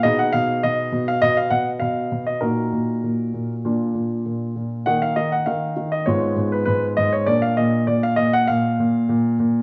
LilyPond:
<<
  \new Staff \with { instrumentName = "Grand piano" } { \time 4/4 \key ees \minor \tempo 4 = 100 << { ees''16 ges''16 f''8 ees''8. f''16 ees''16 f''16 ges''8 f''8. ees''16 | bes'2. r4 | ges''16 f''16 ees''16 ges''16 f''8. ees''16 des''8. ces''16 ces''8 ees''16 des''16 | d''16 f''16 ees''8 d''16 f''16 ees''16 ges''16 f''4. r8 | } \\ { <ees' aes'>1 | <ees' ges'>2 <d' f'>2 | <bes ees'>2 <ces' f'>2 | <bes d'>1 | } >> }
  \new Staff \with { instrumentName = "Grand piano" } { \clef bass \time 4/4 \key ees \minor ces8 ces8 ces8 ces8 ces8 ces8 ces8 ces8 | bes,8 bes,8 bes,8 bes,8 bes,8 bes,8 bes,8 bes,8 | ees8 ees8 ees8 ees8 aes,8 aes,8 aes,8 aes,8 | bes,8 bes,8 bes,8 bes,8 bes,8 bes,8 bes,8 bes,8 | }
>>